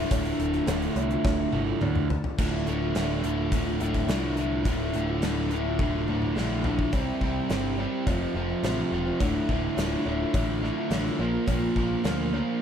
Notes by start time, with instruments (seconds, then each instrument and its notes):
Already playing: overdriven electric guitar D2 A2 D3 A3 F4, steel-string acoustic guitar F4 A4
0.10 picked electric bass D1, steel-string acoustic guitar D3 A3 D4 F4 A4, kick, closed hi-hat, cowbell
0.25 closed hi-hat
0.38 picked electric bass D1, steel-string acoustic guitar A3 D4 F4 A4, closed hi-hat
0.52 steel-string acoustic guitar D4 F4 A4, snare, closed hi-hat
0.66 picked electric bass D1, overdriven electric guitar D2 A2, steel-string acoustic guitar D3 A3 D4 F4 A4, snare, closed hi-hat, cowbell
0.71 overdriven electric guitar D3
0.82 closed hi-hat
0.95 picked electric bass C2, steel-string acoustic guitar A3 D4 F4 A4, closed hi-hat, cowbell
1.10 steel-string acoustic guitar D4 F4 A4, closed hi-hat
1.25 picked electric bass D1, kick, snare, cowbell
1.52 picked electric bass G1, overdriven electric guitar D2 A2 D3, steel-string acoustic guitar A3 D4 F4 A4, high tom
1.66 steel-string acoustic guitar D4 F4 A4
1.81 picked electric bass D2, steel-string acoustic guitar D3 A3 D4 F4 A4, mid tom, cowbell
1.95 mid tom
2.09 steel-string acoustic guitar A3 D4 F4 A4, floor tom
2.24 floor tom
2.38 picked electric bass D1, overdriven electric guitar D2 A2 D3, steel-string acoustic guitar D3 A3 D4 F4 A4, kick, crash
2.66 overdriven electric guitar D2 A2 D3, steel-string acoustic guitar A3 D4 F4 A4, closed hi-hat
2.81 steel-string acoustic guitar D4 F4 A4
2.94 picked electric bass D1, overdriven electric guitar D2 A2 D3, steel-string acoustic guitar D3 A3 D4 F4 A4, snare, closed hi-hat
3.23 picked electric bass D1, overdriven electric guitar D2 A2 D3, steel-string acoustic guitar A3 D4 F4 A4, closed hi-hat
3.37 steel-string acoustic guitar D4 F4 A4
3.52 picked electric bass D1, overdriven electric guitar D2 A2 D3, kick, closed hi-hat
3.64 steel-string acoustic guitar D4 F4 A4
3.79 picked electric bass D1, overdriven electric guitar D2 A2 D3, steel-string acoustic guitar A3 D4 F4 A4, closed hi-hat
3.94 kick
4.08 picked electric bass C2, overdriven electric guitar D2 A2 D3, steel-string acoustic guitar D3 A3 D4 F4 A4, snare, closed hi-hat
4.36 overdriven electric guitar D2 A2 D3, steel-string acoustic guitar A3 D4 F4 A4, closed hi-hat
4.50 steel-string acoustic guitar D4 F4 A4
4.64 picked electric bass D1, overdriven electric guitar D2 A2, steel-string acoustic guitar D3 A3 D4 F4 A4, kick, closed hi-hat
4.68 overdriven electric guitar D3
4.92 picked electric bass D1, overdriven electric guitar D2 A2, steel-string acoustic guitar A3 D4 F4 A4, closed hi-hat
4.97 overdriven electric guitar D3
5.06 steel-string acoustic guitar D4 F4 A4
5.21 picked electric bass D1, overdriven electric guitar D2 A2 D3, steel-string acoustic guitar D3 A3 D4 F4 A4, snare, closed hi-hat
5.50 overdriven electric guitar D2 A2 D3, steel-string acoustic guitar A3 D4 F4 A4, closed hi-hat
5.65 steel-string acoustic guitar D4 F4 A4
5.79 picked electric bass D1, overdriven electric guitar D2 A2 D3, kick, high tom
5.93 steel-string acoustic guitar D4 F4 A4
6.07 picked electric bass D1, overdriven electric guitar D2 A2 D3, steel-string acoustic guitar A3 D4 F4 A4, mid tom
6.22 mid tom
6.35 picked electric bass A#1, overdriven electric guitar D2 A2 D3, steel-string acoustic guitar D3 A3 D4 F4 A4, snare
6.63 overdriven electric guitar D2 A2 D3, steel-string acoustic guitar A3 D4 F4 A4, floor tom
6.78 steel-string acoustic guitar D4 F4 A4, kick
6.91 picked electric bass C2, steel-string acoustic guitar C3 G3 C4 E4 G4, overdriven electric guitar C3 G3 C4, kick, closed hi-hat, cowbell
7.21 picked electric bass C2, overdriven electric guitar C3 G3 C4, kick
7.49 picked electric bass G1, steel-string acoustic guitar C3 G3 C4 E4 G4, overdriven electric guitar C3 G3 C4, snare, closed hi-hat, cowbell
7.78 overdriven electric guitar C3 G3 C4, steel-string acoustic guitar G3 C4 E4 G4, cowbell
7.92 steel-string acoustic guitar C4 E4 G4
8.06 picked electric bass F1, steel-string acoustic guitar F2 C3 F3 A3 C4 F4, overdriven electric guitar F2 C3 F3, kick, closed hi-hat, cowbell
8.21 steel-string acoustic guitar F3 A3 C4 F4
8.35 picked electric bass F1, overdriven electric guitar F2 C3 F3, steel-string acoustic guitar F3 A3 C4 F4
8.49 steel-string acoustic guitar F3 A3 C4 F4
8.63 picked electric bass A1, overdriven electric guitar F2 C3 F3, steel-string acoustic guitar F2 C3 F3 A3 C4 F4, snare, closed hi-hat, cowbell
8.91 picked electric bass E1, overdriven electric guitar F2 C3 F3, steel-string acoustic guitar F3 A3 C4 F4
9.05 steel-string acoustic guitar F3 A3 C4 F4
9.19 picked electric bass D1, overdriven electric guitar D2 A2 D3, steel-string acoustic guitar D3 F3 A3 D4 F4, kick, closed hi-hat, cowbell
9.49 picked electric bass D1, overdriven electric guitar D2 A2 D3, kick
9.76 picked electric bass D1, overdriven electric guitar D2 A2 D3, steel-string acoustic guitar D3 F3 A3 D4 F4, snare, closed hi-hat, cowbell
10.05 picked electric bass D1, overdriven electric guitar D2 A2 D3, steel-string acoustic guitar F3 A3 D4 F4, cowbell
10.19 steel-string acoustic guitar A3 D4 F4
10.34 picked electric bass A1, overdriven electric guitar D2 A2 D3, kick, closed hi-hat, cowbell
10.48 steel-string acoustic guitar A3 D4 F4
10.62 overdriven electric guitar D2 A2 D3, steel-string acoustic guitar F3 A3 D4 F4, snare
10.76 steel-string acoustic guitar A3 D4 F4
10.90 picked electric bass A1, overdriven electric guitar D2 A2 D3, steel-string acoustic guitar D3 F3 A3 D4 F4, snare, closed hi-hat, cowbell
11.06 snare
11.18 picked electric bass A#1, overdriven electric guitar A#2 F3 A#3, steel-string acoustic guitar F3 A#3 D4 F4, cowbell
11.33 steel-string acoustic guitar A#3 D4 F4
11.46 picked electric bass A#1, steel-string acoustic guitar A#2 F3 A#3 D4 F4, overdriven electric guitar A#2 F3 A#3, kick, closed hi-hat, cowbell
11.76 picked electric bass A#1, overdriven electric guitar A#2 F3 A#3, kick
12.03 picked electric bass D2, steel-string acoustic guitar A#2 F3 A#3 D4 F4, overdriven electric guitar A#2 F3 A#3, snare, closed hi-hat, cowbell
12.31 overdriven electric guitar A#2 F3 A#3, steel-string acoustic guitar F3 A#3 D4 F4, cowbell